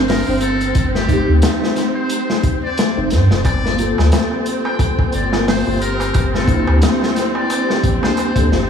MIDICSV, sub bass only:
0, 0, Header, 1, 2, 480
1, 0, Start_track
1, 0, Key_signature, -2, "minor"
1, 0, Tempo, 674157
1, 535, Time_signature, 4, 2, 24, 8
1, 6193, End_track
2, 0, Start_track
2, 0, Title_t, "Sub bass"
2, 0, Program_c, 0, 38
2, 0, Note_on_c, 0, 31, 83
2, 168, Note_off_c, 0, 31, 0
2, 198, Note_on_c, 0, 31, 99
2, 519, Note_off_c, 0, 31, 0
2, 539, Note_on_c, 0, 31, 107
2, 887, Note_off_c, 0, 31, 0
2, 917, Note_on_c, 0, 38, 87
2, 1006, Note_off_c, 0, 38, 0
2, 2118, Note_on_c, 0, 29, 88
2, 2221, Note_on_c, 0, 43, 108
2, 2232, Note_off_c, 0, 29, 0
2, 2338, Note_off_c, 0, 43, 0
2, 2356, Note_on_c, 0, 29, 78
2, 2445, Note_off_c, 0, 29, 0
2, 2456, Note_on_c, 0, 31, 109
2, 2806, Note_off_c, 0, 31, 0
2, 2837, Note_on_c, 0, 38, 90
2, 2926, Note_off_c, 0, 38, 0
2, 3661, Note_on_c, 0, 31, 85
2, 4009, Note_off_c, 0, 31, 0
2, 4039, Note_on_c, 0, 31, 101
2, 4359, Note_off_c, 0, 31, 0
2, 4380, Note_on_c, 0, 31, 106
2, 4728, Note_off_c, 0, 31, 0
2, 4758, Note_on_c, 0, 38, 90
2, 4846, Note_off_c, 0, 38, 0
2, 5580, Note_on_c, 0, 34, 92
2, 5698, Note_off_c, 0, 34, 0
2, 5952, Note_on_c, 0, 38, 95
2, 6043, Note_off_c, 0, 38, 0
2, 6060, Note_on_c, 0, 31, 95
2, 6178, Note_off_c, 0, 31, 0
2, 6193, End_track
0, 0, End_of_file